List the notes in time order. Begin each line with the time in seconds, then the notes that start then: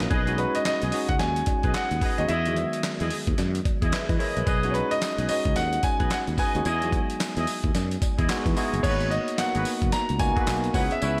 Already playing: A#3 C#4 D#4 F#4
0.00 A#1, snare, closed hi-hat
0.11 B1 G#4 B4 D#5, kick, closed hi-hat, cowbell
0.27 G#3 C#4 D#4 F#4, closed hi-hat
0.38 G#3 C#4 D#4 F#4 B4, closed hi-hat, cowbell
0.55 D#5, closed hi-hat
0.65 D#5, snare, clap, closed hi-hat, cowbell
0.82 B1 G#4 B4 D#5, closed hi-hat
0.92 G#3 C#4 D#4 F#4, open hi-hat
1.09 C#2 F#5, kick, closed hi-hat
1.19 D#2 G#5, snare, closed hi-hat, cowbell
1.36 closed hi-hat
1.46 kick, closed hi-hat, cowbell
1.63 B1 G#4 B4 D#5, kick, closed hi-hat
1.74 F#5, snare, clap, closed hi-hat, cowbell
1.91 D#2, closed hi-hat
2.01 G#4 B4 D#5, kick, open hi-hat
2.18 D#2 G#3 C#4 D#4 F#4 D#5, closed hi-hat
2.28 E2 E4 G#4 D#5 E5, closed hi-hat, cowbell
2.46 D#3 F#3 B3 F#4, closed hi-hat
2.53 G#3, closed hi-hat
2.57 cowbell
2.73 closed hi-hat
2.83 snare, clap, closed hi-hat, cowbell
3.00 E2 E4 G#4 D#5, closed hi-hat
3.10 open hi-hat
3.27 D#2, kick, closed hi-hat
3.38 F#2, snare, closed hi-hat, cowbell
3.55 closed hi-hat
3.65 kick, closed hi-hat, cowbell
3.82 E2 E4 G#4 D#5, kick, closed hi-hat
3.92 G#4 B4 E5, snare, clap, closed hi-hat, cowbell
4.09 E3 B4 D#5, kick, closed hi-hat
4.20 E4 G#4 A#4 C#5 D#5 B5, open hi-hat
4.37 A#1 G#4 B4, closed hi-hat
4.47 B1 G#4 B4 D#5, kick, closed hi-hat, tambourine, cowbell
4.63 G#3 C#4 D#4 F#4, closed hi-hat
4.71 B4 C#5, cowbell
4.75 G#3 C#4 D#4 F#4, closed hi-hat
4.91 D#5, closed hi-hat
5.01 snare, clap, closed hi-hat, tambourine, cowbell
5.18 B1 G#4 B4 D#5, closed hi-hat
5.29 G#3 C#4 D#4 F#4 D#5, open hi-hat, tambourine
5.45 C#2, kick, closed hi-hat
5.56 D#2 F#5, snare, closed hi-hat, tambourine, cowbell
5.73 closed hi-hat
5.83 G#5, kick, closed hi-hat, tambourine, cowbell
6.00 B1 G#4 B4 D#5, kick, closed hi-hat
6.10 F#5, snare, clap, closed hi-hat, tambourine, cowbell
6.27 D#2, closed hi-hat
6.38 G#4 B4 D#5 G#5, kick, open hi-hat, tambourine
6.55 D#2 G#3 C#4 D#4 F#4, closed hi-hat
6.65 E2 E4 G#4 D#5, closed hi-hat, tambourine, cowbell
6.82 F#3 B3 D#4 F#4, closed hi-hat
6.89 G#3, kick, cowbell
6.93 closed hi-hat
7.10 closed hi-hat
7.20 snare, clap, closed hi-hat, tambourine, cowbell
7.37 E2 E4 G#4 D#5, closed hi-hat
7.47 open hi-hat, tambourine
7.64 D#2, kick, closed hi-hat
7.75 F#2, snare, closed hi-hat, tambourine, cowbell
7.91 closed hi-hat
8.02 kick, closed hi-hat, tambourine, cowbell
8.18 E2 E4 G#4 D#5, kick, closed hi-hat
8.29 G#3 B3 D#4 F#4 G#5, snare, clap, closed hi-hat, tambourine, cowbell
8.46 E3, kick, closed hi-hat
8.56 G#3 B3 D#4 E4 F#4 G#4 D#5 E5, open hi-hat, tambourine
8.73 F#1, closed hi-hat
8.83 G#1 A#3 B3 D#4 F#4 G#4 B4 C#5, kick, closed hi-hat, crash, tambourine, cowbell
9.00 closed hi-hat
9.11 D#5, closed hi-hat
9.28 closed hi-hat
9.38 A#3 B3 D#4 F#4 F#5, snare, clap, closed hi-hat, tambourine, cowbell
9.55 G#1 F#4 G#4 B4, closed hi-hat
9.65 open hi-hat, tambourine
9.82 F#1, kick, closed hi-hat
9.92 A#5, snare, closed hi-hat, tambourine, cowbell
10.09 C#2, closed hi-hat
10.19 A#3 B3 D#4 F#4 G#5, kick, closed hi-hat, tambourine, cowbell
10.36 A#3 B3 D#4 F#4 G#4 B4, kick, closed hi-hat
10.47 B1, snare, clap, closed hi-hat, tambourine, cowbell
10.64 closed hi-hat
10.74 C#2 B3 C#4 E4 F#4 B4 F#5, kick, open hi-hat, tambourine
10.82 G#4
10.91 E5, closed hi-hat
11.01 C#2 C#4 E4 B4, closed hi-hat, tambourine, cowbell